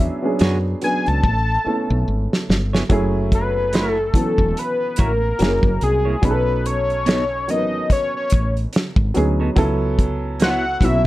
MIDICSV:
0, 0, Header, 1, 7, 480
1, 0, Start_track
1, 0, Tempo, 833333
1, 1669, Time_signature, 4, 2, 24, 8
1, 6375, End_track
2, 0, Start_track
2, 0, Title_t, "Analog synth lead"
2, 0, Program_c, 0, 81
2, 0, Note_on_c, 0, 76, 99
2, 238, Note_off_c, 0, 76, 0
2, 482, Note_on_c, 0, 80, 95
2, 621, Note_on_c, 0, 81, 108
2, 629, Note_off_c, 0, 80, 0
2, 1194, Note_off_c, 0, 81, 0
2, 1927, Note_on_c, 0, 71, 92
2, 2250, Note_off_c, 0, 71, 0
2, 2250, Note_on_c, 0, 69, 92
2, 2401, Note_off_c, 0, 69, 0
2, 2401, Note_on_c, 0, 69, 82
2, 2643, Note_on_c, 0, 71, 92
2, 2652, Note_off_c, 0, 69, 0
2, 2881, Note_on_c, 0, 70, 94
2, 2890, Note_off_c, 0, 71, 0
2, 3355, Note_off_c, 0, 70, 0
2, 3360, Note_on_c, 0, 68, 89
2, 3599, Note_on_c, 0, 71, 107
2, 3608, Note_off_c, 0, 68, 0
2, 3838, Note_on_c, 0, 73, 108
2, 3847, Note_off_c, 0, 71, 0
2, 4322, Note_on_c, 0, 75, 97
2, 4330, Note_off_c, 0, 73, 0
2, 4555, Note_off_c, 0, 75, 0
2, 4564, Note_on_c, 0, 73, 98
2, 4688, Note_off_c, 0, 73, 0
2, 4703, Note_on_c, 0, 73, 88
2, 4920, Note_off_c, 0, 73, 0
2, 6007, Note_on_c, 0, 78, 107
2, 6247, Note_on_c, 0, 76, 102
2, 6256, Note_off_c, 0, 78, 0
2, 6375, Note_off_c, 0, 76, 0
2, 6375, End_track
3, 0, Start_track
3, 0, Title_t, "Clean electric guitar"
3, 0, Program_c, 1, 27
3, 232, Note_on_c, 1, 62, 80
3, 234, Note_on_c, 1, 66, 85
3, 236, Note_on_c, 1, 68, 91
3, 243, Note_on_c, 1, 73, 96
3, 328, Note_off_c, 1, 62, 0
3, 329, Note_off_c, 1, 66, 0
3, 329, Note_off_c, 1, 68, 0
3, 333, Note_off_c, 1, 73, 0
3, 1575, Note_on_c, 1, 73, 63
3, 1578, Note_on_c, 1, 68, 58
3, 1580, Note_on_c, 1, 64, 53
3, 1583, Note_on_c, 1, 59, 51
3, 1626, Note_off_c, 1, 73, 0
3, 1628, Note_off_c, 1, 64, 0
3, 1628, Note_off_c, 1, 68, 0
3, 1630, Note_off_c, 1, 59, 0
3, 2149, Note_on_c, 1, 57, 74
3, 2154, Note_on_c, 1, 64, 83
3, 2157, Note_on_c, 1, 66, 75
3, 2158, Note_on_c, 1, 73, 85
3, 2284, Note_off_c, 1, 57, 0
3, 2286, Note_off_c, 1, 64, 0
3, 2288, Note_off_c, 1, 66, 0
3, 2288, Note_off_c, 1, 73, 0
3, 2866, Note_on_c, 1, 57, 57
3, 2868, Note_on_c, 1, 64, 58
3, 2873, Note_on_c, 1, 66, 64
3, 2876, Note_on_c, 1, 73, 65
3, 2943, Note_off_c, 1, 57, 0
3, 2944, Note_off_c, 1, 64, 0
3, 2947, Note_off_c, 1, 66, 0
3, 2948, Note_off_c, 1, 73, 0
3, 3486, Note_on_c, 1, 68, 57
3, 3486, Note_on_c, 1, 73, 64
3, 3493, Note_on_c, 1, 64, 57
3, 3496, Note_on_c, 1, 58, 54
3, 3541, Note_off_c, 1, 68, 0
3, 3541, Note_off_c, 1, 73, 0
3, 3545, Note_off_c, 1, 64, 0
3, 3547, Note_off_c, 1, 58, 0
3, 4066, Note_on_c, 1, 59, 78
3, 4071, Note_on_c, 1, 63, 85
3, 4075, Note_on_c, 1, 69, 84
3, 4076, Note_on_c, 1, 73, 100
3, 4165, Note_off_c, 1, 59, 0
3, 4167, Note_off_c, 1, 63, 0
3, 4169, Note_off_c, 1, 69, 0
3, 4170, Note_off_c, 1, 73, 0
3, 5414, Note_on_c, 1, 73, 58
3, 5419, Note_on_c, 1, 69, 60
3, 5420, Note_on_c, 1, 63, 52
3, 5426, Note_on_c, 1, 59, 55
3, 5465, Note_off_c, 1, 73, 0
3, 5468, Note_off_c, 1, 63, 0
3, 5468, Note_off_c, 1, 69, 0
3, 5471, Note_off_c, 1, 59, 0
3, 5991, Note_on_c, 1, 59, 77
3, 5999, Note_on_c, 1, 64, 82
3, 6002, Note_on_c, 1, 66, 91
3, 6004, Note_on_c, 1, 73, 82
3, 6125, Note_off_c, 1, 59, 0
3, 6129, Note_off_c, 1, 64, 0
3, 6130, Note_off_c, 1, 66, 0
3, 6131, Note_off_c, 1, 73, 0
3, 6375, End_track
4, 0, Start_track
4, 0, Title_t, "Upright piano"
4, 0, Program_c, 2, 0
4, 0, Control_c, 2, 64, 127
4, 0, Note_on_c, 2, 54, 89
4, 0, Note_on_c, 2, 59, 84
4, 0, Note_on_c, 2, 61, 86
4, 0, Note_on_c, 2, 62, 90
4, 0, Note_on_c, 2, 68, 101
4, 78, Note_off_c, 2, 54, 0
4, 81, Note_off_c, 2, 59, 0
4, 83, Note_off_c, 2, 61, 0
4, 86, Note_off_c, 2, 62, 0
4, 87, Note_off_c, 2, 68, 0
4, 128, Note_on_c, 2, 54, 73
4, 131, Note_on_c, 2, 59, 70
4, 136, Note_on_c, 2, 61, 71
4, 141, Note_on_c, 2, 62, 70
4, 145, Note_on_c, 2, 68, 88
4, 434, Note_off_c, 2, 54, 0
4, 435, Note_off_c, 2, 59, 0
4, 438, Note_off_c, 2, 61, 0
4, 440, Note_off_c, 2, 62, 0
4, 442, Note_off_c, 2, 68, 0
4, 469, Note_on_c, 2, 54, 67
4, 476, Note_on_c, 2, 59, 59
4, 477, Note_on_c, 2, 61, 61
4, 482, Note_on_c, 2, 62, 59
4, 485, Note_on_c, 2, 71, 70
4, 709, Note_off_c, 2, 54, 0
4, 712, Note_off_c, 2, 59, 0
4, 713, Note_off_c, 2, 61, 0
4, 715, Note_off_c, 2, 62, 0
4, 715, Control_c, 2, 64, 0
4, 717, Note_off_c, 2, 71, 0
4, 812, Control_c, 2, 64, 127
4, 947, Note_on_c, 2, 57, 65
4, 954, Note_on_c, 2, 59, 63
4, 958, Note_on_c, 2, 61, 60
4, 960, Note_on_c, 2, 64, 65
4, 968, Note_on_c, 2, 69, 71
4, 1599, Note_off_c, 2, 57, 0
4, 1603, Note_off_c, 2, 59, 0
4, 1605, Note_off_c, 2, 61, 0
4, 1606, Note_off_c, 2, 64, 0
4, 1609, Note_off_c, 2, 69, 0
4, 1667, Note_on_c, 2, 54, 102
4, 1672, Note_on_c, 2, 57, 94
4, 1675, Control_c, 2, 64, 0
4, 1675, Note_on_c, 2, 61, 92
4, 1680, Note_on_c, 2, 64, 95
4, 1683, Note_on_c, 2, 68, 114
4, 1763, Control_c, 2, 64, 127
4, 2319, Note_off_c, 2, 54, 0
4, 2322, Note_off_c, 2, 57, 0
4, 2323, Note_off_c, 2, 61, 0
4, 2326, Note_off_c, 2, 64, 0
4, 2327, Note_off_c, 2, 68, 0
4, 2385, Note_on_c, 2, 54, 60
4, 2387, Note_on_c, 2, 52, 59
4, 2391, Note_on_c, 2, 61, 59
4, 2395, Note_on_c, 2, 64, 60
4, 2400, Note_on_c, 2, 59, 69
4, 3095, Note_off_c, 2, 54, 0
4, 3103, Note_on_c, 2, 54, 75
4, 3104, Note_off_c, 2, 61, 0
4, 3108, Note_off_c, 2, 52, 0
4, 3109, Note_off_c, 2, 64, 0
4, 3109, Note_on_c, 2, 58, 71
4, 3112, Note_on_c, 2, 61, 64
4, 3114, Note_off_c, 2, 59, 0
4, 3116, Control_c, 2, 64, 0
4, 3118, Note_on_c, 2, 64, 61
4, 3121, Note_on_c, 2, 68, 82
4, 3209, Control_c, 2, 64, 127
4, 3540, Note_off_c, 2, 54, 0
4, 3543, Note_off_c, 2, 58, 0
4, 3545, Note_off_c, 2, 61, 0
4, 3547, Note_off_c, 2, 64, 0
4, 3549, Note_off_c, 2, 68, 0
4, 3581, Note_on_c, 2, 54, 89
4, 3587, Note_on_c, 2, 59, 77
4, 3590, Note_on_c, 2, 61, 82
4, 3593, Note_on_c, 2, 63, 82
4, 3595, Control_c, 2, 64, 0
4, 3597, Note_on_c, 2, 68, 82
4, 3633, Note_on_c, 2, 69, 99
4, 3637, Note_off_c, 2, 68, 0
4, 3696, Control_c, 2, 64, 127
4, 4236, Note_off_c, 2, 54, 0
4, 4239, Note_off_c, 2, 59, 0
4, 4241, Note_off_c, 2, 61, 0
4, 4242, Note_off_c, 2, 63, 0
4, 4262, Note_off_c, 2, 69, 0
4, 4307, Note_on_c, 2, 54, 62
4, 4311, Note_on_c, 2, 59, 56
4, 4314, Note_on_c, 2, 61, 59
4, 4317, Note_on_c, 2, 63, 56
4, 4323, Note_on_c, 2, 70, 57
4, 4360, Note_off_c, 2, 70, 0
4, 4360, Note_on_c, 2, 71, 74
4, 5176, Note_off_c, 2, 54, 0
4, 5178, Note_off_c, 2, 59, 0
4, 5180, Note_off_c, 2, 61, 0
4, 5181, Note_off_c, 2, 63, 0
4, 5203, Note_off_c, 2, 71, 0
4, 5266, Note_on_c, 2, 54, 85
4, 5271, Note_on_c, 2, 59, 75
4, 5276, Note_on_c, 2, 61, 79
4, 5278, Note_on_c, 2, 63, 73
4, 5280, Note_on_c, 2, 68, 93
4, 5484, Note_off_c, 2, 54, 0
4, 5487, Note_off_c, 2, 59, 0
4, 5489, Note_off_c, 2, 61, 0
4, 5490, Note_off_c, 2, 63, 0
4, 5492, Note_off_c, 2, 68, 0
4, 5505, Note_on_c, 2, 54, 112
4, 5508, Note_on_c, 2, 59, 102
4, 5512, Note_on_c, 2, 61, 102
4, 5517, Control_c, 2, 64, 0
4, 5517, Note_on_c, 2, 64, 98
4, 5521, Note_on_c, 2, 69, 122
4, 5614, Control_c, 2, 64, 127
4, 6158, Note_off_c, 2, 54, 0
4, 6160, Note_off_c, 2, 59, 0
4, 6162, Note_off_c, 2, 61, 0
4, 6164, Note_off_c, 2, 64, 0
4, 6166, Note_off_c, 2, 69, 0
4, 6227, Note_on_c, 2, 54, 66
4, 6233, Note_on_c, 2, 59, 61
4, 6236, Note_on_c, 2, 60, 51
4, 6241, Note_on_c, 2, 64, 65
4, 6243, Note_on_c, 2, 66, 78
4, 6275, Note_on_c, 2, 61, 60
4, 6276, Note_off_c, 2, 60, 0
4, 6375, Note_off_c, 2, 54, 0
4, 6375, Note_off_c, 2, 59, 0
4, 6375, Note_off_c, 2, 61, 0
4, 6375, Note_off_c, 2, 64, 0
4, 6375, Note_off_c, 2, 66, 0
4, 6375, End_track
5, 0, Start_track
5, 0, Title_t, "Fretless electric bass"
5, 0, Program_c, 3, 35
5, 237, Note_on_c, 3, 42, 95
5, 422, Note_off_c, 3, 42, 0
5, 621, Note_on_c, 3, 37, 86
5, 694, Note_off_c, 3, 37, 0
5, 716, Note_on_c, 3, 33, 91
5, 902, Note_off_c, 3, 33, 0
5, 1096, Note_on_c, 3, 35, 89
5, 1172, Note_off_c, 3, 35, 0
5, 1197, Note_on_c, 3, 32, 79
5, 1304, Note_off_c, 3, 32, 0
5, 1437, Note_on_c, 3, 31, 78
5, 1622, Note_off_c, 3, 31, 0
5, 1675, Note_on_c, 3, 30, 89
5, 2369, Note_off_c, 3, 30, 0
5, 2527, Note_on_c, 3, 28, 77
5, 2606, Note_off_c, 3, 28, 0
5, 2879, Note_on_c, 3, 33, 85
5, 3063, Note_off_c, 3, 33, 0
5, 3111, Note_on_c, 3, 30, 93
5, 3221, Note_off_c, 3, 30, 0
5, 3246, Note_on_c, 3, 30, 77
5, 3326, Note_off_c, 3, 30, 0
5, 3354, Note_on_c, 3, 36, 78
5, 3541, Note_off_c, 3, 36, 0
5, 3592, Note_on_c, 3, 35, 91
5, 4317, Note_off_c, 3, 35, 0
5, 4317, Note_on_c, 3, 33, 82
5, 4503, Note_off_c, 3, 33, 0
5, 4801, Note_on_c, 3, 33, 85
5, 4985, Note_off_c, 3, 33, 0
5, 5167, Note_on_c, 3, 32, 80
5, 5246, Note_off_c, 3, 32, 0
5, 5282, Note_on_c, 3, 38, 86
5, 5465, Note_off_c, 3, 38, 0
5, 5517, Note_on_c, 3, 37, 98
5, 6210, Note_off_c, 3, 37, 0
5, 6229, Note_on_c, 3, 35, 90
5, 6375, Note_off_c, 3, 35, 0
5, 6375, End_track
6, 0, Start_track
6, 0, Title_t, "Muted fretless electric bass strokes"
6, 958, Note_on_c, 9, 29, 45
6, 1016, Note_off_c, 9, 29, 0
6, 2389, Note_on_c, 9, 29, 44
6, 2447, Note_off_c, 9, 29, 0
6, 6375, End_track
7, 0, Start_track
7, 0, Title_t, "Drums"
7, 226, Note_on_c, 9, 42, 74
7, 240, Note_on_c, 9, 38, 115
7, 283, Note_off_c, 9, 42, 0
7, 298, Note_off_c, 9, 38, 0
7, 470, Note_on_c, 9, 42, 70
7, 527, Note_off_c, 9, 42, 0
7, 612, Note_on_c, 9, 42, 33
7, 670, Note_off_c, 9, 42, 0
7, 711, Note_on_c, 9, 36, 82
7, 769, Note_off_c, 9, 36, 0
7, 1343, Note_on_c, 9, 38, 75
7, 1401, Note_off_c, 9, 38, 0
7, 1441, Note_on_c, 9, 38, 92
7, 1499, Note_off_c, 9, 38, 0
7, 1581, Note_on_c, 9, 38, 90
7, 1639, Note_off_c, 9, 38, 0
7, 1669, Note_on_c, 9, 36, 103
7, 1669, Note_on_c, 9, 42, 73
7, 1727, Note_off_c, 9, 36, 0
7, 1727, Note_off_c, 9, 42, 0
7, 1912, Note_on_c, 9, 36, 83
7, 1914, Note_on_c, 9, 42, 64
7, 1969, Note_off_c, 9, 36, 0
7, 1972, Note_off_c, 9, 42, 0
7, 2147, Note_on_c, 9, 42, 78
7, 2162, Note_on_c, 9, 38, 106
7, 2205, Note_off_c, 9, 42, 0
7, 2220, Note_off_c, 9, 38, 0
7, 2383, Note_on_c, 9, 36, 88
7, 2392, Note_on_c, 9, 42, 66
7, 2441, Note_off_c, 9, 36, 0
7, 2449, Note_off_c, 9, 42, 0
7, 2524, Note_on_c, 9, 36, 72
7, 2582, Note_off_c, 9, 36, 0
7, 2633, Note_on_c, 9, 42, 67
7, 2690, Note_off_c, 9, 42, 0
7, 2858, Note_on_c, 9, 42, 69
7, 2874, Note_on_c, 9, 36, 85
7, 2915, Note_off_c, 9, 42, 0
7, 2931, Note_off_c, 9, 36, 0
7, 3105, Note_on_c, 9, 42, 80
7, 3125, Note_on_c, 9, 38, 111
7, 3163, Note_off_c, 9, 42, 0
7, 3183, Note_off_c, 9, 38, 0
7, 3242, Note_on_c, 9, 36, 88
7, 3300, Note_off_c, 9, 36, 0
7, 3348, Note_on_c, 9, 42, 58
7, 3405, Note_off_c, 9, 42, 0
7, 3588, Note_on_c, 9, 36, 106
7, 3588, Note_on_c, 9, 42, 74
7, 3645, Note_off_c, 9, 36, 0
7, 3645, Note_off_c, 9, 42, 0
7, 3834, Note_on_c, 9, 42, 68
7, 3892, Note_off_c, 9, 42, 0
7, 3975, Note_on_c, 9, 42, 30
7, 4032, Note_off_c, 9, 42, 0
7, 4068, Note_on_c, 9, 42, 77
7, 4083, Note_on_c, 9, 38, 101
7, 4125, Note_off_c, 9, 42, 0
7, 4140, Note_off_c, 9, 38, 0
7, 4312, Note_on_c, 9, 42, 64
7, 4370, Note_off_c, 9, 42, 0
7, 4550, Note_on_c, 9, 36, 81
7, 4552, Note_on_c, 9, 42, 73
7, 4607, Note_off_c, 9, 36, 0
7, 4610, Note_off_c, 9, 42, 0
7, 4780, Note_on_c, 9, 42, 69
7, 4795, Note_on_c, 9, 36, 85
7, 4837, Note_off_c, 9, 42, 0
7, 4852, Note_off_c, 9, 36, 0
7, 4935, Note_on_c, 9, 42, 32
7, 4993, Note_off_c, 9, 42, 0
7, 5027, Note_on_c, 9, 42, 80
7, 5047, Note_on_c, 9, 38, 119
7, 5084, Note_off_c, 9, 42, 0
7, 5105, Note_off_c, 9, 38, 0
7, 5163, Note_on_c, 9, 36, 101
7, 5220, Note_off_c, 9, 36, 0
7, 5268, Note_on_c, 9, 42, 57
7, 5326, Note_off_c, 9, 42, 0
7, 5509, Note_on_c, 9, 42, 75
7, 5510, Note_on_c, 9, 36, 114
7, 5566, Note_off_c, 9, 42, 0
7, 5567, Note_off_c, 9, 36, 0
7, 5752, Note_on_c, 9, 36, 91
7, 5755, Note_on_c, 9, 42, 66
7, 5810, Note_off_c, 9, 36, 0
7, 5813, Note_off_c, 9, 42, 0
7, 5988, Note_on_c, 9, 42, 81
7, 6003, Note_on_c, 9, 38, 104
7, 6046, Note_off_c, 9, 42, 0
7, 6061, Note_off_c, 9, 38, 0
7, 6225, Note_on_c, 9, 36, 84
7, 6232, Note_on_c, 9, 42, 71
7, 6282, Note_off_c, 9, 36, 0
7, 6290, Note_off_c, 9, 42, 0
7, 6375, End_track
0, 0, End_of_file